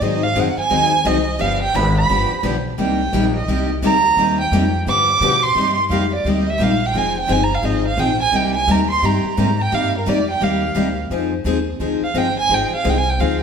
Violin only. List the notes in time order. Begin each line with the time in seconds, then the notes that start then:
0.02 D#5
0.23 F5
0.40 F#5
0.60 G#5
1.07 D#5
1.41 F5
1.62 G5
1.75 B5
1.98 B5
2.80 G5
3.36 D#5
3.85 A#5
4.41 G5
4.89 D6
5.43 C6
5.91 F5
6.15 D5
6.29 D#5
6.50 E5
6.63 F5
6.86 G5
6.98 G#5
7.20 G5
7.32 G#5
7.44 A#5
7.54 F5
7.65 D#5
7.88 F5
7.99 G5
8.22 G#5
8.36 G5
8.55 G#5
8.71 A#5
8.90 C6
9.05 A#5
9.62 G5
9.75 F5
9.98 A#4
10.09 D5
10.30 G5
10.43 F5
12.04 F5
12.18 G5
12.39 G#5
12.54 G5
12.75 F5
12.89 G5
12.98 G#5
13.09 G5
13.20 F5